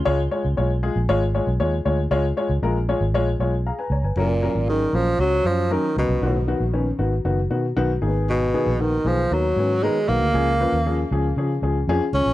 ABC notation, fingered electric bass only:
X:1
M:4/4
L:1/16
Q:1/4=116
K:C#mix
V:1 name="Fingered electric bass" clef=bass
C,,2 z C,, B,,,3 A,,, G,,,3 B,,, D,,2 =D,,2 | C,,2 z C,, A,,,3 G,,, A,,,2 B,,,3 z C,, =G,,, | F,,,3 G,,,3 A,,,2 C,,2 F,,3 z C,, ^B,,, | B,,,3 A,,,3 G,,,2 F,,,2 B,,2 B,,,2 G,,,2- |
G,,,3 A,,,3 B,,,2 D,,2 G,,3 z B,,, =D,, | C,,3 D,,3 C,,2 C,2 C,,2 E,, z C,, A,,, |]